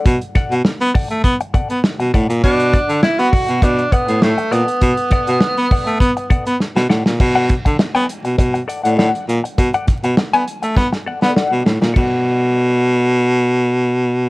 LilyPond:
<<
  \new Staff \with { instrumentName = "Clean electric guitar" } { \time 4/4 \key b \minor \tempo 4 = 101 r8 <a' d'' fis''>16 r8. <a' d'' fis''>16 r8. <a' d'' fis''>16 r8. <a' d'' fis''>16 r16 | r8 <a' d'' fis''>16 r8. <a' d'' fis''>16 r8. <a' d'' fis''>16 r8. <a' d'' fis''>16 r16 | r8 <a' d'' fis''>16 r8. <a' d'' fis''>16 r8. <a' d'' fis''>16 r8. <a' d'' fis''>16 r16 | r16 <a' d'' fis''>16 r8. <a' d'' gis''>16 r4 <a' d'' fis''>16 <a' d'' fis''>16 <a' d'' fis''>8 r8 |
r16 <a' d'' fis''>16 r8. <a' d'' gis''>16 r4 <a' d'' fis''>16 <a' d'' fis''>16 <a' d'' fis''>8 r8 | <a' d'' fis''>1 | }
  \new Staff \with { instrumentName = "Tenor saxophone" } { \time 4/4 \key b \minor r1 | d'4 e'16 fis'8. d'8 b8 a8 b8~ | b2. r4 | r1 |
r1 | r1 | }
  \new Staff \with { instrumentName = "Baritone saxophone" } { \clef bass \time 4/4 \key b \minor b,16 r8 b,16 b16 b16 r16 a16 b16 r16 b16 b16 r16 b,16 a,16 ais,16 | b,8. d16 b16 b16 r16 b,16 b,8 r16 a,16 a,16 r16 ais,16 r16 | b,16 r8 b,16 b16 b16 r16 a16 b16 r16 b16 b16 r16 b,16 a,16 ais,16 | b,8. d16 b16 b16 r16 b,16 b,8 r16 a,16 a,16 r16 ais,16 r16 |
b,16 r8 b,16 b16 b16 r16 a16 b16 r16 b16 b16 r16 b,16 a,16 ais,16 | b,1 | }
  \new DrumStaff \with { instrumentName = "Drums" } \drummode { \time 4/4 <hh bd>16 hh16 <hh bd sn>16 hh16 sn16 hh16 <hho bd>16 hh16 <hh bd>16 hh16 <hh bd>16 hh16 sn16 hh16 <hh bd>16 hh16 | <hh bd>16 hh16 <hh bd sn>16 hh16 sn16 hh16 <hho bd>16 hh16 <hh bd>16 hh16 <hh bd>16 hh16 sn16 hh16 hh16 hh16 | <hh bd>16 hh16 <hh bd sn>16 hh16 sn16 hh16 <hho bd>16 hh16 <hh bd>16 hh16 <hh bd>16 hh16 sn16 sn16 sn16 sn16 | <cymc bd>8 <hh bd sn>16 <hh bd>16 sn16 hh16 hh16 hh16 <hh bd>16 hh16 hh16 hh16 sn16 hh16 hh16 hh16 |
<hh bd>16 hh16 <hh bd sn>16 hh16 sn16 hh16 hh16 hh16 <bd sn>16 sn8 sn16 sn8 sn16 sn16 | <cymc bd>4 r4 r4 r4 | }
>>